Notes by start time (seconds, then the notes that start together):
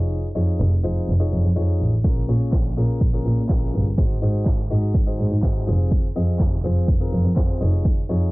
Already playing: F1 D#4 F4 G#4 C#5
0.35 F2 D#4 F4 G#4 C#5
0.59 F1
0.83 F2 D#4 F4 G#4 C5
1.07 F1
1.20 D#4 F4 G#4 C#5
1.32 F2
1.44 F2
1.56 F2 D#4 F4 G#4 C#5
1.80 A1
2.04 A#1 C#4 F4 G#4 A#4, kick, closed hi-hat
2.16 closed hi-hat
2.28 A#2 C#4 F4 G#4 C#5
2.40 closed hi-hat
2.52 A#1, kick, snare, clap, closed hi-hat
2.65 closed hi-hat
2.77 A#2 C#4 F4 G#4 A#4
2.89 closed hi-hat
3.01 A#1, kick, closed hi-hat
3.13 C#4 F4 G#4 A#4, closed hi-hat
3.25 A#2
3.37 A#2, closed hi-hat
3.49 A#1 C#4 F4 G#4 A#4, kick, snare, clap, closed hi-hat
3.62 closed hi-hat
3.74 G1
3.86 closed hi-hat
3.98 G#1 D#4 F#4 G#4 C5, kick, closed hi-hat, shaker
4.10 closed hi-hat
4.22 G#2 D#4 F#4 G#4 C5, shaker
4.34 closed hi-hat, shaker
4.46 G#1, kick, snare, clap, closed hi-hat, shaker
4.58 closed hi-hat
4.70 G#2 D#4 F#4 G#4 D#5, shaker
4.83 closed hi-hat
4.94 G#1, kick, closed hi-hat, shaker
5.06 D#4 F#4 G#4 C5, closed hi-hat
5.19 G#2, shaker
5.31 G#2, closed hi-hat, shaker
5.43 G#1 D#4 F#4 G#4 C5, kick, snare, clap, closed hi-hat
5.55 closed hi-hat
5.67 F1 C4 F4 G#4 C5, shaker
5.79 closed hi-hat
5.91 kick, closed hi-hat, shaker
6.04 closed hi-hat
6.16 F2 C4 F4 G#4 D#5, shaker
6.28 closed hi-hat, shaker
6.40 F1, kick, snare, clap, closed hi-hat, shaker
6.52 closed hi-hat
6.64 F2 C4 F4 G#4 C5, shaker
6.76 closed hi-hat, shaker
6.88 F1, kick, closed hi-hat, shaker
7.00 C4 F4 G#4 A#4, closed hi-hat
7.12 F2, shaker
7.24 F2, closed hi-hat, shaker
7.36 F2 C4 F4 G#4 C5, kick, snare, clap, closed hi-hat, shaker
7.49 closed hi-hat
7.60 F1 D#4 F4 G#4 C#5, shaker
7.73 closed hi-hat, shaker
7.85 kick, closed hi-hat, shaker
7.97 closed hi-hat
8.09 F2 D#4 F4 G#4 C#5, shaker
8.21 closed hi-hat, shaker